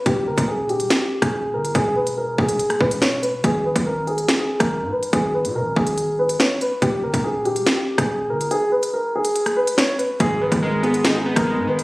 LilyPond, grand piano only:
\new Staff \with { instrumentName = "Grand piano" } { \time 4/4 \key gis \minor \tempo 4 = 142 g'8 ais'8 gis'8 g'8. g'8 gis'8. ais'8 | gis'8 b'8 ais'8 gis'4 b'8 cis''8 b'8 | gis'8 b'8 ais'8 gis'8. gis'8 ais'8. b'8 | gis'8 b'8 ais'8 gis'4 b'8 cis''8 b'8 |
g'8 ais'8 gis'8 g'8. g'8 gis'8. ais'8 | gis'8 b'8 ais'8 gis'4 b'8 cis''8 b'8 | gis'8 b'8 ais'8 gis'8. gis'8 ais'8. b'8 | }